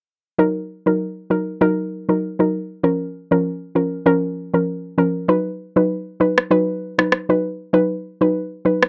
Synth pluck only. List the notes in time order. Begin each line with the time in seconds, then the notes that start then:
0.38 F#3 D#4 A#4
0.86 F#3 D#4 A#4
1.30 F#3 D#4 A#4
1.61 F#3 D#4 A#4
2.09 F#3 D#4 A#4
2.39 F#3 D#4 A#4
2.83 F3 C#4 A#4
3.31 F3 C#4 A#4
3.75 F3 C#4 A#4
4.06 F3 C#4 A#4
4.54 F3 C#4 A#4
4.98 F3 C#4 A#4
5.28 F#3 D#4 B4
5.76 F#3 D#4 B4
6.20 F#3 D#4 B4
6.51 F#3 D#4 B4
6.98 F#3 D#4 B4
7.29 F#3 D#4 B4
7.73 F#3 D#4 B4
8.21 F#3 D#4 B4
8.65 F#3 D#4 B4